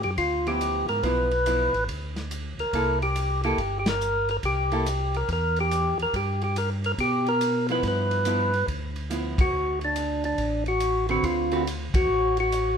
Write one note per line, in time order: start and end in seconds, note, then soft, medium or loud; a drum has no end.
0.03 0.18 F#2 medium
0.03 0.11 G4 medium
0.03 ride soft
0.18 0.85 D2 medium
0.18 0.47 F4 medium
0.18 kick soft
0.18 ride medium
0.47 1.01 F3 medium
0.47 1.01 B3 medium
0.47 1.01 E4 medium
0.47 0.86 G4 medium
0.47 ride soft
0.61 hi-hat pedal medium
0.61 ride medium
0.88 1.03 G#2 medium
0.88 1.04 A#4 medium
0.88 ride soft
1.03 1.70 B1 medium
1.03 1.29 F3 medium
1.03 1.29 B3 medium
1.03 1.30 E4 medium
1.03 1.84 B4 loud
1.03 kick soft
1.03 ride medium
1.31 ride soft
1.46 1.71 F3 medium
1.46 1.72 B3 medium
1.46 1.72 E4 medium
1.46 hi-hat pedal medium
1.46 ride medium
1.73 1.87 A1 medium
1.73 ride soft
1.88 2.55 D2 medium
1.88 kick soft
1.88 ride medium
2.16 snare soft
2.16 ride soft
2.31 hi-hat pedal medium
2.31 ride medium
2.58 2.65 D2 soft
2.58 2.99 A#4 medium
2.58 ride soft
2.73 3.54 C2 medium
2.73 2.99 A#3 medium
2.73 2.99 E4 medium
2.73 2.99 A4 medium
2.73 kick soft
2.73 ride medium
3.02 3.42 G4 medium
3.02 ride soft
3.16 hi-hat pedal medium
3.16 ride medium
3.43 3.57 A#3 medium
3.43 3.57 E4 medium
3.43 3.78 G4 medium
3.43 3.58 A4 medium
3.43 ride soft
3.58 4.39 G1 medium
3.58 kick soft
3.58 ride medium
3.79 3.87 G4 medium
3.86 4.30 A#4 loud
3.86 snare medium
3.86 ride medium
4.01 hi-hat pedal medium
4.29 4.37 A#4 medium
4.29 ride soft
4.43 5.24 C2 medium
4.43 5.17 G4 medium
4.43 kick soft
4.43 ride medium
4.72 4.84 A#3 medium
4.72 4.85 E4 medium
4.72 4.85 A4 medium
4.72 ride soft
4.86 hi-hat pedal medium
4.86 ride medium
5.14 5.30 A#4 medium
5.14 ride soft
5.29 5.95 E2 medium
5.29 kick soft
5.29 ride medium
5.33 5.59 A#4 loud
5.56 ride soft
5.61 5.98 G4 loud
5.71 hi-hat pedal medium
5.71 ride medium
5.99 6.06 E2 soft
5.99 6.15 A#4 medium
5.99 ride soft
6.13 6.94 G2 medium
6.13 6.43 G4 medium
6.13 kick soft
6.13 ride medium
6.41 6.57 G4 medium
6.41 ride soft
6.56 6.70 A#4 medium
6.56 hi-hat pedal soft
6.56 ride medium
6.84 6.92 A#4 medium
6.84 ride soft
6.98 7.79 B2 medium
6.98 7.28 G4 medium
6.98 kick soft
6.98 ride medium
7.26 7.67 A#4 medium
7.26 ride soft
7.41 hi-hat pedal medium
7.41 ride medium
7.69 8.23 F3 medium
7.69 8.24 B3 medium
7.69 8.24 E4 medium
7.69 7.84 B4 medium
7.69 ride soft
7.83 8.64 G2 medium
7.83 kick soft
7.83 ride medium
7.88 8.66 B4 medium
8.11 ride soft
8.25 8.51 F3 medium
8.25 8.51 B3 medium
8.25 8.51 E4 medium
8.25 hi-hat pedal medium
8.25 ride medium
8.54 ride soft
8.68 9.49 D2 medium
8.68 kick soft
8.68 ride medium
8.96 ride soft
9.10 9.36 F3 medium
9.10 9.36 B3 medium
9.10 9.36 E4 medium
9.10 hi-hat pedal medium
9.10 ride medium
9.38 9.79 F#4 medium
9.38 kick medium
9.38 ride medium
9.53 10.34 D2 medium
9.81 10.24 D4 medium
9.81 ride soft
9.96 hi-hat pedal medium
9.96 ride medium
10.24 10.64 D4 medium
10.24 ride soft
10.38 11.19 A1 medium
10.38 kick soft
10.38 ride medium
10.66 11.07 F#4 medium
10.66 ride soft
10.80 hi-hat pedal medium
10.80 ride medium
11.09 11.50 D3 medium
11.09 11.51 C4 medium
11.09 11.25 F#4 medium
11.09 11.52 B4 medium
11.09 ride soft
11.23 11.90 D2 medium
11.23 11.63 F4 medium
11.23 kick soft
11.23 ride medium
11.52 11.64 D3 medium
11.52 11.65 C4 medium
11.52 11.65 F#4 medium
11.52 11.65 B4 medium
11.52 ride soft
11.67 hi-hat pedal medium
11.67 ride medium
11.94 12.07 D#2 medium
11.94 12.38 F#4 loud
11.94 kick medium
11.94 ride medium
12.09 12.78 A1 medium
12.37 12.78 F#4 medium
12.37 ride soft
12.52 hi-hat pedal medium
12.52 ride medium